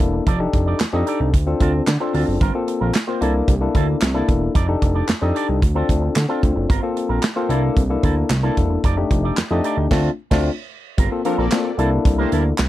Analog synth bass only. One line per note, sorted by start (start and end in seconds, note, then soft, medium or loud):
0.00 0.21 E1 medium
0.27 0.47 F1 loud
0.54 0.74 F1 loud
0.80 0.86 F2 medium
0.93 1.04 F2 medium
1.20 1.35 C2 medium
1.34 1.54 D2 medium
1.61 1.81 D2 medium
1.87 1.98 D3 loud
2.14 2.25 D2 medium
2.28 2.38 F#1 medium
2.41 2.51 G1 loud
2.81 2.92 A#1 medium
3.22 3.42 C2 medium
3.48 3.69 C2 medium
3.75 3.95 D2 medium
4.02 4.22 C2 medium
4.29 4.49 E1 medium
4.55 4.76 F1 loud
4.82 5.03 F1 loud
5.09 5.14 F2 medium
5.22 5.32 F2 medium
5.49 5.64 C2 medium
5.62 5.83 D2 medium
5.89 6.10 D2 loud
6.16 6.26 D3 medium
6.43 6.53 D2 medium
6.56 6.66 F#1 medium
6.70 6.80 G1 loud
7.09 7.20 A#1 loud
7.49 7.70 C2 medium
7.77 7.97 C2 medium
8.03 8.24 D2 loud
8.30 8.50 C2 loud
8.57 8.78 E1 medium
8.84 9.04 F1 loud
9.11 9.31 F1 loud
9.37 9.43 F2 soft
9.51 9.61 F2 medium
9.77 9.88 D2 medium
9.91 10.09 D2 loud
10.31 10.49 D2 loud
10.98 11.08 G1 loud
11.38 11.49 A#1 medium
11.78 11.99 C2 medium
12.05 12.26 C2 medium
12.32 12.53 D2 medium
12.59 12.69 C2 medium